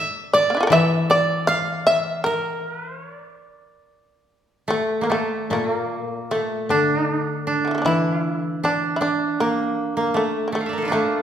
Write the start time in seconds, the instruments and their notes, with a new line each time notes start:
Already playing: shamisen D5, koto D5 E5
0.33 shamisen D5, koto D5
0.50 shamisen A#3
0.55 shamisen D4 E4
0.60 shamisen F4 A4
0.67 koto E3, shamisen A#4
0.72 shamisen D5 E5, koto E5
1.10 koto D5, shamisen D5
1.47 shamisen F5, koto F5
1.87 shamisen E5, koto E5
2.24 shamisen A#4, koto A#4
2.66 shamisen B4, koto B4
2.83 shamisen C5, koto C5
2.99 shamisen C#5, koto C#5
3.15 shamisen D5, koto D5
4.68 koto A3, shamisen A3
5.01 koto A#3, shamisen A#3
5.10 koto A3, shamisen A3
5.50 koto A#2 A3, shamisen A#3
5.69 koto A#3
6.31 koto A3, shamisen A3
6.69 koto D3 D4, shamisen D4
7.47 koto D4
7.65 shamisen D3 E3
7.71 shamisen F3 A3
7.78 shamisen A#3 D4
7.85 koto E3 E4, shamisen E4
8.64 koto D4, shamisen D4
8.96 shamisen E4
9.01 koto D4, shamisen D4
9.40 shamisen A#3, koto A#3
9.97 koto A#3
10.14 koto A3, shamisen A3
10.48 shamisen A#3
10.52 koto A3, shamisen A3
10.61 koto F5
10.66 koto D5 E5
10.73 koto A#4
10.78 koto A4
10.82 koto E4 F4
10.88 koto A#3 D4
10.92 shamisen A3, koto A3